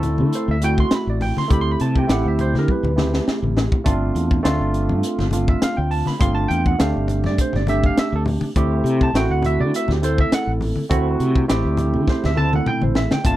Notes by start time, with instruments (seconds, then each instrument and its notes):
Already playing: fretless electric bass D2, tine electric piano A3 C4 E4 A4
0.03 closed hi-hat, low conga
0.18 fretless electric bass D3, high conga
0.33 tine electric piano C5, closed hi-hat
0.48 fretless electric bass D2, tine electric piano E5
0.62 tine electric piano A3 C4 E4 F#4 G5, closed hi-hat
0.78 tine electric piano C6, kick
0.91 tine electric piano B5, muted fretless electric bass stroke, snare, closed hi-hat
1.07 fretless electric bass A1, tine electric piano D5
1.21 tine electric piano G5, open hi-hat, low conga
1.37 tine electric piano C6, muted fretless electric bass stroke, snare, high conga
1.48 fretless electric bass D2, tine electric piano A3 C4 E4 G4, kick, closed hi-hat
1.53 tine electric piano B5
1.61 tine electric piano C6
1.71 tine electric piano B5
1.80 fretless electric bass C3, tine electric piano A5, closed hi-hat
1.96 tine electric piano G5, kick
2.07 fretless electric bass A1, tine electric piano A3 C4 E4 G4, snare, closed hi-hat
2.12 tine electric piano F#5
2.25 fretless electric bass D2, tine electric piano E5
2.39 tine electric piano C5, closed hi-hat, high conga, low conga
2.54 fretless electric bass D3, snare, high conga
2.59 tine electric piano A#4
2.68 tine electric piano B4, kick, high tom
2.83 fretless electric bass D2, low conga
2.96 tine electric piano A3 C4 E4 G4, snare, high conga
3.14 snare
3.27 muted fretless electric bass stroke, snare
3.42 fretless electric bass A1, high conga
3.57 snare, low conga
3.72 kick, low conga
3.84 fretless electric bass G1, tine electric piano A3 C4 D4 F4, kick, closed hi-hat
4.15 fretless electric bass E2, closed hi-hat
4.31 kick
4.43 fretless electric bass D2, tine electric piano A3 C4 D4 F4, snare, closed hi-hat
4.60 fretless electric bass G1
4.74 closed hi-hat
4.89 fretless electric bass G2, high conga
5.03 closed hi-hat
5.18 fretless electric bass G1, snare, low conga
5.31 tine electric piano A3 C4 D4 F4, closed hi-hat, high conga
5.48 tine electric piano E5, kick
5.62 tine electric piano F5, snare, closed hi-hat
5.77 fretless electric bass D2, tine electric piano G5
5.91 tine electric piano A5, open hi-hat
6.06 tine electric piano B5, muted fretless electric bass stroke, snare, high conga
6.19 fretless electric bass G1, tine electric piano A3 C4 D4 F4 C6, kick, closed hi-hat
6.35 tine electric piano A5
6.48 fretless electric bass E2, tine electric piano G5, closed hi-hat
6.66 tine electric piano F#5, kick
6.79 fretless electric bass D2, tine electric piano A3 C4 D4 G4 F5, snare, closed hi-hat
6.96 fretless electric bass G1
7.08 closed hi-hat, low conga
7.24 fretless electric bass G2, tine electric piano D5, snare, high conga
7.38 tine electric piano C5, kick, closed hi-hat
7.53 fretless electric bass G1, tine electric piano D5, snare, low conga
7.67 tine electric piano A3 C4 D4 G4 E5, closed hi-hat, high conga
7.84 tine electric piano F5, kick
7.98 tine electric piano E5, muted fretless electric bass stroke, snare, closed hi-hat
8.12 fretless electric bass D2, tine electric piano A4
8.26 open hi-hat, low conga
8.41 muted fretless electric bass stroke, high conga
8.56 fretless electric bass D2, tine electric piano A3 C4 E4 G4, kick, closed hi-hat
8.84 fretless electric bass C3, closed hi-hat
9.01 tine electric piano A5, kick
9.13 fretless electric bass A1, tine electric piano A3 C4 E4 F#4 G5, snare, closed hi-hat
9.29 fretless electric bass D2, tine electric piano F#5
9.42 tine electric piano E5, closed hi-hat, low conga
9.59 fretless electric bass D3, tine electric piano D5
9.74 tine electric piano E5, closed hi-hat
9.88 fretless electric bass D2, tine electric piano G4, snare, low conga
10.02 tine electric piano A3 C4 E4 A4 C5, closed hi-hat
10.18 tine electric piano E5, kick
10.32 tine electric piano F#5, muted fretless electric bass stroke, snare, closed hi-hat
10.47 fretless electric bass A1
10.61 open hi-hat, low conga
10.76 muted fretless electric bass stroke, high conga
10.89 fretless electric bass D2, tine electric piano A3 C4 E4 F#4, kick, closed hi-hat
11.20 fretless electric bass C3, closed hi-hat
11.36 kick
11.48 fretless electric bass A1, tine electric piano A3 C4 E4 G4, snare, closed hi-hat
11.65 fretless electric bass D2
11.77 closed hi-hat, high conga, low conga
11.94 fretless electric bass D3, high conga
12.08 tine electric piano C5, kick, snare
12.24 fretless electric bass D2, tine electric piano E5, snare, low conga
12.35 tine electric piano A3 C4 E4 A4 A5, high conga
12.53 tine electric piano F#5, mid tom
12.66 tine electric piano G5, muted fretless electric bass stroke, mid tom
12.82 fretless electric bass A1, tine electric piano C5, high conga
12.95 tine electric piano E5, snare, low conga
13.11 tine electric piano G5, muted fretless electric bass stroke, snare, high conga
13.24 fretless electric bass G1, tine electric piano A3 C4 D4 F4 A5, kick, closed hi-hat